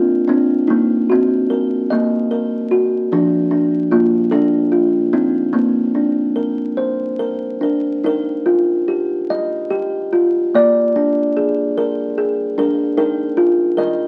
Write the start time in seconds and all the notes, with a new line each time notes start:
Already playing: C4 F4 A#4
0.28 C4 D4
0.68 A#3 D#4
1.10 C4 F#4
1.50 A#4
1.90 A#3 D#5
2.31 A#4
2.71 F#4
3.12 F3 D4
3.51 D4
3.91 A#3 F4
4.31 D4 A4
4.72 F4
5.13 C4 D#4
5.53 A#3 C4
5.95 D4
6.36 A#4
6.77 C5
7.19 A#4
7.61 D4 A#4
8.04 D#4 A#4
8.46 F4
8.88 G4
9.30 D#5
9.70 G4
10.13 F4
10.54 A#3 D5
10.96 D4
11.37 G#4
11.78 A#4
12.18 G#4
12.58 D4 A#4
12.97 D#4 A#4
13.37 F4
13.77 A#4 D#5